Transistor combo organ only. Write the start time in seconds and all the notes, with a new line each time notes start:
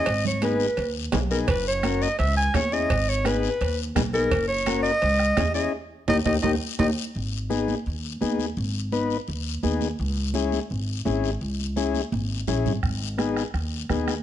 0.42 B3 D#4 G#4
1.12 B3 D#4 G#4
1.31 B3 D#4 G#4
1.84 C#4 F#4 A#4
2.54 C#4 E4 G#4
2.72 C#4 E4 G#4
3.24 B3 D#4 G#4
3.95 B3 D#4 G#4
4.14 B3 D#4 G#4
4.67 C#4 F#4 A#4
5.37 C#4 E4 G#4
5.54 C#4 E4 G#4
6.08 A#3 D#4 G4
6.26 A#3 D#4 G4
6.44 A#3 D#4 G4
6.79 A#3 D#4 G4
7.50 B3 D#4 G#4
8.21 B3 D#4 G#4
8.92 B3 D#4 B4
9.63 B3 D#4 G#4
10.35 C#4 E4 G#4
11.05 C#4 E4 G#4
11.76 C#4 E4 G#4
12.48 C#4 E4 G#4
13.18 B3 D#4 G#4
13.89 B3 D#4 G#4